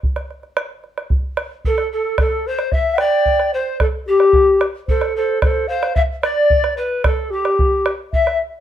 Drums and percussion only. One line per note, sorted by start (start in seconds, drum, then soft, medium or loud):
0.03 bombo low medium
0.16 bombo rim soft
0.31 bombo rim soft
0.43 bombo rim soft
0.57 bombo rim medium
0.84 bombo rim soft
0.98 bombo rim soft
1.10 bombo low medium
1.37 bombo rim medium
1.65 bombo low soft
1.78 bombo rim soft
2.18 bombo rim medium
2.18 bombo low medium
2.59 bombo rim soft
2.72 bombo low medium
2.98 bombo rim medium
3.26 bombo low soft
3.40 bombo rim soft
3.80 bombo rim medium
3.80 bombo low medium
4.20 bombo rim soft
4.33 bombo low medium
4.61 bombo rim medium
4.88 bombo low medium
5.01 bombo rim soft
5.42 bombo rim medium
5.42 bombo low medium
5.83 bombo rim medium
5.96 bombo low medium
6.23 bombo rim medium
6.50 bombo low medium
6.64 bombo rim medium
6.78 bombo rim soft
7.04 bombo rim medium
7.04 bombo low medium
7.19 bombo rim soft
7.45 bombo rim medium
7.59 bombo low medium
7.86 bombo rim medium
8.13 bombo low soft
8.27 bombo rim soft